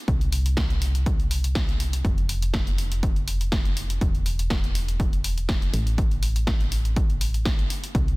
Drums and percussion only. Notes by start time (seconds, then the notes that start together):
0.08 kick, closed hi-hat
0.21 closed hi-hat
0.32 open hi-hat
0.46 closed hi-hat
0.57 kick, snare, closed hi-hat
0.70 closed hi-hat
0.82 open hi-hat
0.95 closed hi-hat
1.06 kick, closed hi-hat
1.20 closed hi-hat
1.31 open hi-hat
1.44 closed hi-hat
1.55 kick, snare, closed hi-hat
1.69 closed hi-hat
1.80 open hi-hat
1.93 closed hi-hat
2.05 kick, closed hi-hat
2.18 closed hi-hat
2.29 open hi-hat
2.42 closed hi-hat
2.54 kick, snare, closed hi-hat
2.67 closed hi-hat
2.78 open hi-hat
2.92 closed hi-hat
3.03 kick, closed hi-hat
3.16 closed hi-hat
3.28 open hi-hat
3.41 closed hi-hat
3.52 kick, snare, closed hi-hat
3.65 closed hi-hat
3.77 open hi-hat
3.90 closed hi-hat
4.01 kick, closed hi-hat
4.15 closed hi-hat
4.26 open hi-hat
4.39 closed hi-hat
4.50 kick, snare, closed hi-hat
4.64 closed hi-hat
4.75 open hi-hat
4.88 closed hi-hat
5.00 kick, closed hi-hat
5.13 closed hi-hat
5.24 open hi-hat
5.38 closed hi-hat
5.49 kick, snare, closed hi-hat
5.62 closed hi-hat
5.74 open hi-hat
5.87 closed hi-hat
5.98 kick, closed hi-hat
6.11 closed hi-hat
6.23 open hi-hat
6.36 closed hi-hat
6.47 kick, snare, closed hi-hat
6.60 closed hi-hat
6.72 open hi-hat
6.85 closed hi-hat
6.96 kick, closed hi-hat
7.10 closed hi-hat
7.21 open hi-hat
7.34 closed hi-hat
7.45 kick, snare, closed hi-hat
7.59 closed hi-hat
7.70 open hi-hat
7.84 closed hi-hat
7.95 kick, closed hi-hat
8.08 closed hi-hat